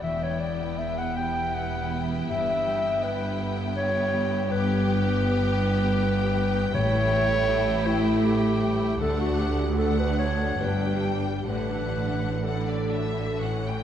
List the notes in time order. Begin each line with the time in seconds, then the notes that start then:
Already playing: B3 B4
0.02 E1 E2 E3 B3 E4 E5 G5
0.23 C#5
0.41 B3 D5
0.78 B4 E5
0.98 F#5
1.17 G4 G5
1.54 B4 F#5
1.91 B3
2.29 G1 G2 E5
2.67 G3
3.03 B3 B4
3.39 B4
3.76 B3 C#5
4.13 G3
4.49 G2 B3 G4 B4 G5
4.86 G3
5.23 B3
5.61 B4
5.98 B3
6.36 G3
6.74 A1 A2 A3 E4 C#5
7.11 G3
7.48 E4
7.85 E4 A4
8.23 E4 G4
8.61 G3
8.99 D2 D3 A3 D4 A4 F#5
9.21 F#4
9.39 D4 G4
9.77 A3 D4 A4 F#5
9.99 B4
10.18 F#4 C#5
10.59 G1 G2 G3 D4 B4 G5
11.03 D4 G4
11.47 A1 A2 D3 D4 B4 F#5
11.95 A3
12.43 D3 D4 A4 F#5
12.67 D5
12.90 F#4 E5
13.39 A2 E3 C#4 F#5
13.66 G5